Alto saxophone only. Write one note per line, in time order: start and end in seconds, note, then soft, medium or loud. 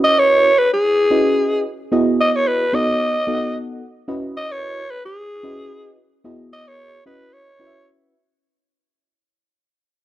0.04 0.20 D#5 loud
0.19 0.60 C#5 loud
0.58 0.73 B4 loud
0.73 1.62 G#4 medium
2.21 2.32 D#5 loud
2.32 2.49 C#5 loud
2.32 2.37 D#5 medium
2.47 2.76 B4 loud
2.75 3.55 D#5 loud
4.37 4.53 D#5 loud
4.52 4.92 C#5 loud
4.90 5.05 B4 loud
5.05 5.94 G#4 medium
6.53 6.69 D#5 loud
6.68 7.06 C#5 loud
7.06 7.35 B4 medium
7.33 7.87 C#5 medium